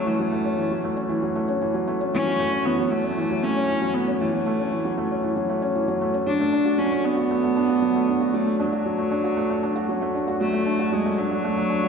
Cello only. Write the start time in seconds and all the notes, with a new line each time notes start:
0.07 A3
2.14 C#4
2.65 B3
2.91 A3
3.43 C#4
3.94 B3
4.21 A3
6.27 D4
6.79 C#4
7.05 B3
8.34 A3
8.60 F#3
10.41 A3
10.93 G#3
11.18 F#3